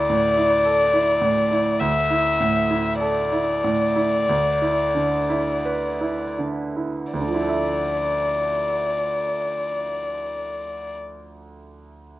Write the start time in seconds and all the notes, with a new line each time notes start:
Already playing: D2 E4 D5
0.10 A2
0.37 E4
0.65 A4
0.94 E4
1.21 A2
1.51 E4
1.80 D2 E5
2.10 E4
2.40 A2
2.71 E4
3.00 A4 D5
3.32 E4
3.64 A2
3.96 E4
4.29 D2
4.62 E4
4.95 D3
5.30 E4
5.65 B4
6.01 E4
6.39 D3
6.76 E4
7.12 D2 D5
7.20 D3
7.27 F3
7.34 E4
7.41 A4
7.48 E5